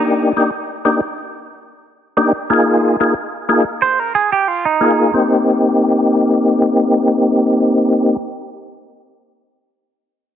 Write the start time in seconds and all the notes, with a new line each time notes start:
Already playing: A#3 D4 D#4 G4
0.37 A#3 D4 D#4 G4
0.85 A#3 D4 D#4 G4
2.17 A#3 D4 D#4 G4
2.50 A#3 D#4 F4 G#4
3.00 A#3 D#4 F4 G#4
3.49 A#3 D#4 F4 G#4
3.82 C5
3.99 A#4
4.15 G#4
4.32 G4
4.48 F4
4.65 D#4
4.81 A#3 D#4 F4 G#4
5.13 A#3 C4 D#4 G4